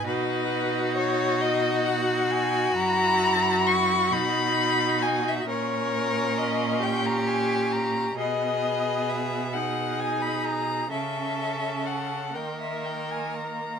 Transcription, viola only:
\new Staff \with { instrumentName = "Viola" } { \time 6/8 \key gis \minor \tempo 4. = 44 dis'2. | e'4. dis'4. | cis'2. | b4. dis'4. |
cis'4. ais4. | }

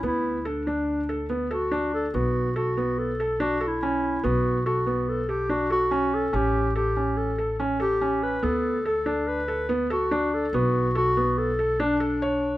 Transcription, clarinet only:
\new Staff \with { instrumentName = "Clarinet" } { \time 5/4 \key b \minor \tempo 4 = 143 e'4 d'2 r8 fis'4 a'8 | fis'4 fis'4 a'4 \tuplet 3/2 { fis'4 e'8~ } e'4 | fis'4 fis'4 a'8 g'8 fis'8 fis'4 a'8 | g'4 g'4 a'4 r8 g'4 b'8 |
a'4 a'4 b'4 r8 fis'4 a'8 | fis'4 fis'4 a'4 d'2 | }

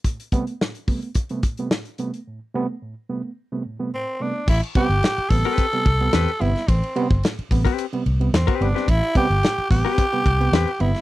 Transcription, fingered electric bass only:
\new Staff \with { instrumentName = "Fingered electric bass" } { \clef bass \time 4/4 \key a \minor \tempo 4 = 109 r1 | r1 | a,,16 r8 g,,16 r8 a,,16 r8. c,8 e,16 r16 g,,16 r16 | a,,16 r8 g,,16 r8 a,,16 r8. c,8 e,16 r16 g,,16 r16 |
a,,16 r8 g,,16 r8 a,,16 r8. c,8 e,16 r16 g,,16 r16 | }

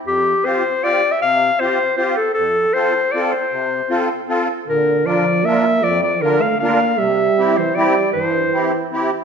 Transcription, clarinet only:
\new Staff \with { instrumentName = "Clarinet" } { \time 3/4 \key f \major \tempo 4 = 156 g'4 c''4 d''8. e''16 | f''4 c''4 c''8 a'8 | a'4 c''4 d''8 c''8~ | c''2 r4 |
bes'4 d''4 e''4 | d''8 d''8 bes'8 f''8 f''4 | e''4. c''8 d''4 | c''2 r4 | }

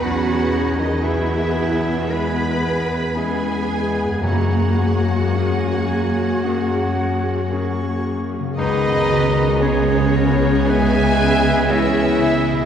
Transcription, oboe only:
\new Staff \with { instrumentName = "Oboe" } { \time 4/4 \key cis \dorian \tempo 4 = 56 gis''4 gis''4 gis''4 gis''4 | gis''2.~ gis''8 r8 | dis''4 cis''4 gis''4 e''4 | }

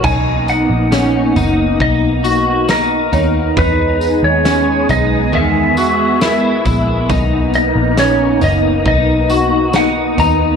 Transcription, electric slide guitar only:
\new Staff \with { instrumentName = "Electric slide guitar" } { \time 4/4 \key b \major \tempo 4 = 68 gis''8 fis''4. dis''4 ais'4 | b'8. cis''8. dis''8 e''4. r8 | r8 dis''8 cis''8 dis''8 dis''4 fis''8 ais''8 | }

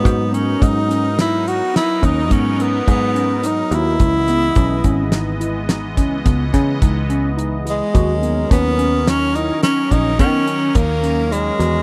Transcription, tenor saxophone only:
\new Staff \with { instrumentName = "Tenor saxophone" } { \time 7/4 \key gis \minor \tempo 4 = 106 b8 cis'8 dis'4 e'8 fis'8 e'8 dis'8 cis'8 b8 b4 dis'8 e'8~ | e'2~ e'8 r1 gis8~ | gis4 b4 cis'8 dis'8 cis'8 dis'8 cis'4 ais4 gis4 | }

